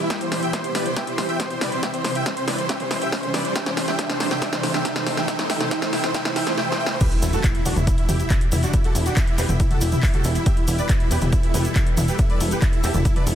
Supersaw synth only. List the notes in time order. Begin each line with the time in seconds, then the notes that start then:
0.10 E5 G5
0.21 C5
0.32 C5
0.43 E5 G5
0.54 C5
0.64 C5
0.75 B4 D5
0.86 C5
0.97 E5 G5
1.07 C5
1.18 C5
1.29 E5 G5
1.40 C5
1.50 C5
1.61 B4 D5
1.72 C5
1.83 E5 G5
1.94 C5
2.04 C5
2.15 E5 G5
2.26 C5
2.37 C5
2.48 B4 D5
2.58 C5
2.69 E5 G5
2.80 C5
2.91 C5
3.02 E5 G5
3.12 C5
3.23 C5
3.34 B4 D5
3.45 C5
3.55 E5 G5
3.66 C5
3.77 C5
3.88 E5 G5
3.99 E5 G5
4.10 C5
4.20 C5
4.31 E5 G5
4.42 E5 G5
4.53 C5
4.63 C5
4.74 E5 G5
4.85 E5 G5
4.96 C5
5.07 C5
5.17 E5 G5
5.28 E5 G5
5.39 C5
5.50 E5 G5
5.60 C5
5.71 E5 G5
5.82 C5
5.93 E5 G5
6.04 C5
6.14 E5 G5
6.25 C5
6.36 E5 G5
6.47 C5
6.58 E5 G5
6.68 C5
6.79 E5 G5
6.90 C5
7.01 G4 B4
7.12 E4
7.22 E4
7.33 F#4 A4
7.55 E4
7.66 D4 F#4
7.77 E4
7.87 E4
7.98 E4
8.09 E4 G4
8.20 E4
8.31 E4
8.52 E4
8.63 D4 F#4
8.74 E4
8.84 F#4 A4
8.95 E4
9.06 D4 F#4
9.17 E4
9.28 E4
9.38 G4 B4
9.49 E4
9.60 E4
9.71 F#4 A4
9.81 E4
9.92 E4
10.03 E4
10.14 F#4 A4
10.25 E4
10.35 E4
10.46 G4 E5
10.57 E4
10.68 E4
10.79 B4 D5
10.89 E4
11.00 E4
11.11 G4 B4
11.22 E4
11.33 E4
11.43 E4
11.54 G4 B4
11.65 E4
11.76 E4
11.97 E4
12.08 G4 B4
12.19 E4
12.30 B4 D5
12.40 E4
12.51 G4 B4
12.62 E4
12.73 E4
12.84 G4 E5
12.94 E4
13.05 E4
13.16 B4 D5
13.27 E4